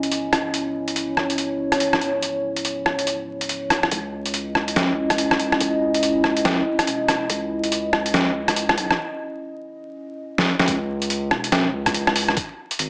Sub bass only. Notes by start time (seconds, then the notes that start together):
Already playing: C#1
3.92 C#2
4.76 C#2
5.39 C#2
6.87 E1
7.30 C#2
8.14 C#2
8.77 B1
10.68 C#2
11.31 E1
11.73 C#2
12.79 G#1